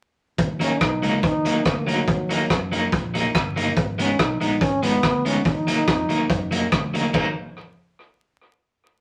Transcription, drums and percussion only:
0.38 kick loud
0.38 closed hi-hat medium
0.61 closed hi-hat medium
0.81 kick loud
0.81 cross-stick loud
0.81 closed hi-hat medium
1.03 closed hi-hat medium
1.23 kick loud
1.23 closed hi-hat medium
1.45 closed hi-hat loud
1.65 kick loud
1.65 cross-stick loud
1.65 closed hi-hat medium
1.88 closed hi-hat medium
2.08 kick loud
2.08 closed hi-hat medium
2.31 closed hi-hat loud
2.50 kick loud
2.50 cross-stick medium
2.50 closed hi-hat medium
2.73 closed hi-hat medium
2.92 kick loud
2.92 closed hi-hat medium
3.15 closed hi-hat medium
3.35 kick loud
3.35 cross-stick loud
3.35 closed hi-hat medium
3.57 closed hi-hat medium
3.76 kick loud
3.76 closed hi-hat medium
3.99 closed hi-hat medium
4.19 kick loud
4.19 cross-stick loud
4.19 closed hi-hat medium
4.41 closed hi-hat medium
4.61 kick loud
4.61 closed hi-hat medium
4.83 closed hi-hat loud
5.03 kick loud
5.03 cross-stick loud
5.03 closed hi-hat medium
5.26 closed hi-hat medium
5.45 kick loud
5.45 closed hi-hat medium
5.68 closed hi-hat loud
5.88 kick loud
5.88 cross-stick loud
5.88 closed hi-hat medium
6.10 closed hi-hat medium
6.30 kick loud
6.30 closed hi-hat medium
6.52 closed hi-hat loud
6.72 kick loud
6.72 cross-stick medium
6.72 closed hi-hat medium
6.95 closed hi-hat medium
7.14 kick medium
7.14 crash medium

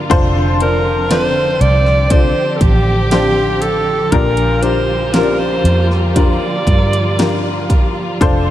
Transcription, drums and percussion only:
0.11 kick loud
0.11 closed hi-hat medium
0.60 closed hi-hat medium
1.11 snare loud
1.11 closed hi-hat medium
1.61 closed hi-hat medium
1.86 snare soft
2.10 kick medium
2.10 closed hi-hat medium
2.61 kick medium
2.61 closed hi-hat medium
3.11 snare loud
3.11 closed hi-hat medium
3.62 closed hi-hat medium
4.12 kick loud
4.12 closed hi-hat medium
4.37 closed hi-hat soft
4.63 closed hi-hat medium
5.14 snare loud
5.14 closed hi-hat medium
5.65 closed hi-hat medium
5.91 snare soft
6.16 kick medium
6.16 closed hi-hat medium
6.67 kick medium
6.67 closed hi-hat medium
6.93 closed hi-hat soft
7.19 snare loud
7.19 closed hi-hat medium
7.70 kick medium
7.70 closed hi-hat medium
8.21 kick loud
8.21 closed hi-hat medium

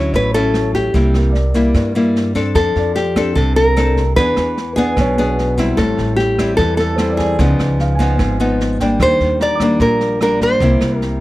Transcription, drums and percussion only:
0.14 kick medium
0.14 snare soft
0.34 snare soft
0.54 cross-stick medium
0.54 snare soft
0.74 kick soft
0.74 snare soft
0.94 kick medium
0.94 snare soft
1.14 cross-stick medium
1.14 snare soft
1.35 snare soft
1.54 kick soft
1.54 snare soft
1.75 kick medium
1.75 cross-stick medium
1.75 snare soft
1.95 snare soft
2.16 snare soft
2.35 kick soft
2.35 snare soft
2.55 kick medium
2.55 cross-stick medium
2.55 snare soft
2.76 snare soft
2.96 snare soft
3.16 kick soft
3.16 cross-stick medium
3.16 snare soft
3.36 kick medium
3.36 snare soft
3.56 snare soft
3.77 cross-stick medium
3.77 snare soft
3.96 kick soft
3.96 snare soft
4.17 kick medium
4.17 snare soft
4.36 cross-stick medium
4.36 snare soft
4.57 snare soft
4.77 kick soft
4.77 snare soft
4.97 kick medium
4.97 cross-stick medium
4.97 snare soft
5.17 snare soft
5.38 snare soft
5.58 kick soft
5.58 snare soft
5.78 kick medium
5.78 cross-stick medium
5.78 snare soft
5.98 snare soft
6.19 snare soft
6.38 kick soft
6.38 cross-stick medium
6.38 snare soft
6.58 kick medium
6.58 snare soft
6.78 snare soft
6.98 cross-stick medium
6.98 snare soft
7.19 kick soft
7.19 snare soft
7.39 kick medium
7.39 snare soft
7.59 cross-stick medium
7.59 snare soft
7.79 snare soft
7.99 kick soft
7.99 snare soft
8.19 kick medium
8.19 cross-stick medium
8.19 snare soft
8.39 snare soft
8.60 snare soft
8.80 kick soft
8.80 snare soft
9.00 kick medium
9.00 cross-stick medium
9.00 snare soft
9.20 snare soft
9.40 snare soft
9.60 kick soft
9.60 cross-stick medium
9.60 snare soft
9.80 kick medium
9.80 snare soft
10.00 snare soft
10.21 cross-stick medium
10.21 snare soft
10.41 kick soft
10.41 snare soft
10.60 kick medium
10.60 snare soft
10.81 cross-stick medium
10.81 snare soft
11.01 snare soft

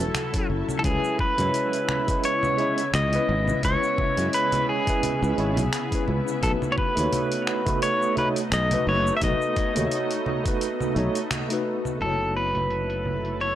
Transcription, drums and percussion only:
0.00 cabasa medium
0.15 finger snap medium
0.15 closed hi-hat medium
0.15 low conga medium
0.15 cabasa medium
0.34 kick loud
0.34 closed hi-hat soft
0.34 cabasa soft
0.69 low conga medium
0.69 cabasa medium
0.84 kick loud
0.84 closed hi-hat medium
0.84 low conga medium
0.84 cabasa soft
1.04 cabasa soft
1.19 kick loud
1.38 closed hi-hat soft
1.38 low conga medium
1.38 cabasa medium
1.54 closed hi-hat soft
1.54 cabasa medium
1.73 closed hi-hat soft
1.73 cabasa soft
1.89 finger snap medium
1.89 low conga medium
2.08 kick loud
2.08 closed hi-hat soft
2.08 cabasa medium
2.24 closed hi-hat medium
2.24 cabasa medium
2.43 low conga medium
2.43 cabasa soft
2.59 closed hi-hat soft
2.78 closed hi-hat soft
2.78 cabasa medium
2.94 finger snap medium
2.94 closed hi-hat medium
2.94 low conga medium
2.94 cabasa medium
3.13 closed hi-hat soft
3.13 cabasa soft
3.48 low conga medium
3.48 cabasa medium
3.63 kick loud
3.63 closed hi-hat soft
3.63 cabasa medium
3.83 cabasa soft
3.98 kick loud
3.98 low conga medium
4.17 closed hi-hat soft
4.17 cabasa medium
4.33 closed hi-hat medium
4.33 cabasa medium
4.52 closed hi-hat soft
4.52 low conga medium
4.52 cabasa soft
4.87 kick loud
4.87 closed hi-hat soft
4.87 cabasa medium
5.03 closed hi-hat medium
5.03 low conga medium
5.03 cabasa medium
5.23 cabasa soft
5.38 closed hi-hat soft
5.57 closed hi-hat soft
5.57 low conga medium
5.57 cabasa medium
5.73 finger snap medium
5.73 closed hi-hat medium
5.73 cabasa medium
5.92 kick loud
5.92 closed hi-hat soft
5.92 cabasa soft
6.08 low conga medium
6.28 cabasa medium
6.43 kick loud
6.43 closed hi-hat medium
6.43 cabasa medium
6.62 low conga medium
6.62 cabasa soft
6.78 kick medium
6.97 closed hi-hat soft
6.97 cabasa medium
7.13 closed hi-hat medium
7.13 low conga medium
7.13 cabasa medium
7.32 closed hi-hat soft
7.32 cabasa soft
7.47 finger snap medium
7.66 kick loud
7.66 closed hi-hat soft
7.66 low conga medium
7.66 cabasa medium
7.82 closed hi-hat medium
7.82 cabasa soft
8.02 cabasa soft
8.17 closed hi-hat soft
8.17 low conga medium
8.36 closed hi-hat soft
8.36 cabasa medium
8.52 finger snap medium
8.52 closed hi-hat medium
8.52 cabasa medium
8.71 closed hi-hat medium
8.71 low conga medium
8.71 cabasa soft
9.07 cabasa medium
9.21 kick loud
9.21 closed hi-hat medium
9.21 low conga medium
9.21 cabasa medium
9.42 cabasa soft
9.56 kick loud
9.56 closed hi-hat soft
9.76 closed hi-hat soft
9.76 low conga medium
9.76 cabasa medium
9.91 closed hi-hat medium
9.91 cabasa medium
10.11 closed hi-hat soft
10.11 cabasa soft
10.26 low conga medium
10.46 kick loud
10.46 closed hi-hat soft
10.46 cabasa medium
10.61 closed hi-hat medium
10.61 cabasa medium
10.81 low conga medium
10.81 cabasa soft
10.96 closed hi-hat soft
11.15 closed hi-hat soft
11.15 cabasa medium
11.31 finger snap medium
11.31 closed hi-hat medium
11.31 low conga medium
11.31 cabasa medium
11.50 closed hi-hat soft
11.50 cabasa soft
11.85 low conga medium
11.85 cabasa medium
12.01 closed hi-hat soft
12.01 low conga medium
12.55 closed hi-hat soft
12.55 low conga medium
12.70 closed hi-hat soft
12.90 closed hi-hat soft
13.05 low conga medium
13.25 closed hi-hat soft
13.41 closed hi-hat soft

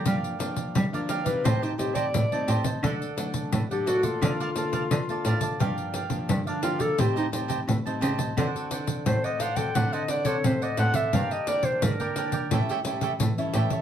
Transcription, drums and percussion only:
0.06 pandeiro medium
0.24 pandeiro soft
0.40 pandeiro medium
0.56 pandeiro medium
0.75 pandeiro medium
0.94 pandeiro soft
1.09 pandeiro medium
1.26 pandeiro medium
1.45 pandeiro medium
1.63 pandeiro soft
1.79 pandeiro medium
1.95 pandeiro medium
2.14 pandeiro medium
2.32 pandeiro soft
2.48 pandeiro medium
2.64 pandeiro medium
2.84 pandeiro medium
3.02 pandeiro soft
3.18 pandeiro medium
3.34 pandeiro medium
3.52 pandeiro medium
3.71 pandeiro soft
3.87 pandeiro medium
4.03 pandeiro medium
4.22 pandeiro medium
4.40 pandeiro soft
4.56 pandeiro medium
4.73 pandeiro medium
4.91 pandeiro medium
5.09 pandeiro soft
5.25 pandeiro medium
5.41 pandeiro medium
5.60 pandeiro medium
5.78 pandeiro soft
5.94 pandeiro medium
6.10 pandeiro medium
6.29 pandeiro medium
6.47 pandeiro soft
6.63 pandeiro medium
6.80 pandeiro medium
6.98 pandeiro medium
7.17 pandeiro soft
7.33 pandeiro medium
7.50 pandeiro medium
7.69 pandeiro medium
7.87 pandeiro soft
8.02 pandeiro medium
8.19 pandeiro medium
8.38 pandeiro medium
8.56 pandeiro soft
8.71 pandeiro medium
8.87 pandeiro medium
9.06 pandeiro medium
9.24 pandeiro soft
9.40 pandeiro medium
9.56 pandeiro medium
9.75 pandeiro medium
9.93 pandeiro soft
10.08 pandeiro medium
10.25 pandeiro medium
10.44 pandeiro medium
10.62 pandeiro soft
10.77 pandeiro medium
10.94 pandeiro medium
11.13 pandeiro medium
11.31 pandeiro soft
11.47 pandeiro medium
11.63 pandeiro medium
11.82 pandeiro medium
12.00 pandeiro soft
12.16 pandeiro medium
12.32 pandeiro medium
12.51 pandeiro medium
12.69 pandeiro soft
12.85 pandeiro medium
13.01 pandeiro medium
13.20 pandeiro medium
13.38 pandeiro soft
13.54 pandeiro medium
13.70 pandeiro medium

